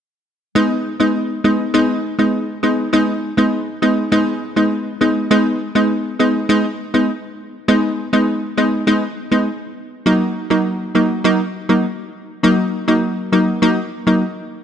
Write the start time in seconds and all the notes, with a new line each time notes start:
0.55 G#3 B3 D#4
1.00 G#3 B3 D#4
1.44 G#3 B3 D#4
1.74 G#3 B3 D#4
2.19 G#3 B3 D#4
2.63 G#3 B3 D#4
2.93 G#3 B3 D#4
3.37 G#3 B3 D#4
3.82 G#3 B3 D#4
4.12 G#3 B3 D#4
4.56 G#3 B3 D#4
5.01 G#3 B3 D#4
5.31 G#3 B3 D#4
5.75 G#3 B3 D#4
6.19 G#3 B3 D#4
6.49 G#3 B3 D#4
6.94 G#3 B3 D#4
7.68 G#3 B3 D#4
8.13 G#3 B3 D#4
8.57 G#3 B3 D#4
8.87 G#3 B3 D#4
9.31 G#3 B3 D#4
10.06 F#3 A#3 D#4
10.50 F#3 A#3 D#4
10.95 F#3 A#3 D#4
11.24 F#3 A#3 D#4
11.69 F#3 A#3 D#4
12.43 F#3 A#3 D#4
12.88 F#3 A#3 D#4
13.32 F#3 A#3 D#4
13.62 F#3 A#3 D#4
14.07 F#3 A#3 D#4